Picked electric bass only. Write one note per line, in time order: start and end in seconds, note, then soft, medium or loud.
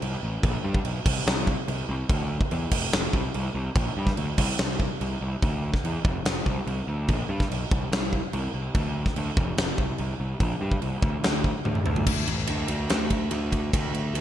0.02 0.15 C2 medium
0.23 0.36 A1 medium
0.43 0.57 A#1 loud
0.64 0.78 G2 loud
0.85 0.99 B1 medium
1.06 1.19 C2 medium
1.27 1.54 C2 loud
1.68 1.82 C2 medium
1.89 2.02 C2 medium
2.09 2.37 D2 loud
2.52 2.65 E2 medium
2.72 2.85 F1 medium
2.93 3.07 F1 loud
3.13 3.27 C2 loud
3.35 3.48 C2 medium
3.55 3.68 C2 loud
3.76 3.89 A#1 loud
3.97 4.10 G2 loud
4.18 4.31 D2 medium
4.38 4.52 C2 medium
4.59 4.86 C2 medium
5.01 5.15 C2 loud
5.21 5.35 C2 medium
5.43 5.70 D2 loud
5.84 5.97 E2 medium
6.05 6.18 F1 medium
6.25 6.39 F1 medium
6.46 6.60 C2 medium
6.67 6.80 C2 medium
6.87 7.10 D2 medium
7.09 7.22 A#1 loud
7.29 7.43 G2 loud
7.50 7.63 B1 medium
7.71 7.85 C2 medium
7.92 8.19 C2 loud
8.33 8.47 C2 loud
8.54 8.67 C2 medium
8.75 9.02 D2 loud
9.16 9.30 D2 medium
9.37 9.51 F1 medium
9.57 9.71 F1 loud
9.78 9.92 C2 medium
9.99 10.13 C2 medium
10.20 10.33 C2 medium
10.40 10.54 A#1 loud
10.61 10.75 G2 loud
10.82 10.95 C2 medium
11.02 11.16 D2 medium
11.23 11.50 D2 medium
11.65 11.79 D2 loud
11.86 12.06 D2 medium
12.07 12.26 D2 loud
12.28 12.47 A1 loud
12.49 12.68 D2 medium
12.69 12.88 D2 medium
12.91 13.28 D2 medium
13.31 13.69 D2 medium
13.73 13.92 D2 loud
13.94 14.13 D2 loud
14.15 14.21 D2 medium